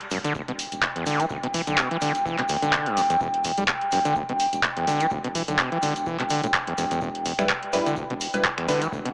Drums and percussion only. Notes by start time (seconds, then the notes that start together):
0.01 closed hi-hat
0.11 open hi-hat, shaker
0.24 closed hi-hat, shaker
0.35 kick, shaker
0.48 closed hi-hat
0.59 open hi-hat, shaker
0.72 closed hi-hat, shaker
0.83 kick, clap, shaker
0.96 closed hi-hat
1.06 open hi-hat, shaker
1.20 closed hi-hat, shaker
1.30 kick, shaker
1.43 closed hi-hat
1.54 kick, open hi-hat, shaker
1.67 closed hi-hat, shaker
1.78 kick, clap, shaker
1.91 closed hi-hat
2.01 open hi-hat, shaker
2.15 closed hi-hat, shaker
2.26 kick, shaker
2.38 clap, closed hi-hat
2.49 open hi-hat, shaker
2.62 closed hi-hat, shaker
2.73 kick, clap, shaker
2.86 closed hi-hat
2.97 open hi-hat, shaker
3.10 closed hi-hat, shaker
3.20 kick, shaker
3.34 closed hi-hat
3.44 kick, open hi-hat, shaker
3.57 closed hi-hat, shaker
3.68 kick, clap, shaker
3.81 closed hi-hat
3.92 open hi-hat, shaker
4.05 closed hi-hat, shaker
4.16 kick, shaker
4.29 closed hi-hat
4.40 open hi-hat, shaker
4.53 closed hi-hat, shaker
4.63 kick, clap, shaker
4.77 closed hi-hat
4.87 open hi-hat, shaker
5.00 closed hi-hat, shaker
5.10 kick, shaker
5.24 closed hi-hat
5.35 kick, open hi-hat, shaker
5.48 closed hi-hat, shaker
5.59 kick, clap, shaker
5.72 closed hi-hat
5.82 open hi-hat, shaker
5.96 closed hi-hat, shaker
6.06 kick, shaker
6.20 clap, closed hi-hat
6.30 open hi-hat, shaker
6.43 closed hi-hat, shaker
6.54 kick, clap, shaker
6.67 closed hi-hat
6.78 open hi-hat, shaker
6.91 closed hi-hat, shaker
7.01 kick, shaker
7.15 closed hi-hat
7.26 kick, open hi-hat, shaker
7.39 finger snap, closed hi-hat, shaker
7.49 kick, clap, shaker
7.63 closed hi-hat
7.73 open hi-hat, shaker
7.86 closed hi-hat, shaker
7.96 kick, shaker
8.10 closed hi-hat
8.21 open hi-hat, shaker
8.33 closed hi-hat, shaker
8.44 kick, clap, shaker
8.58 finger snap, closed hi-hat
8.69 open hi-hat, shaker
8.82 closed hi-hat, shaker
8.92 kick, shaker
9.05 closed hi-hat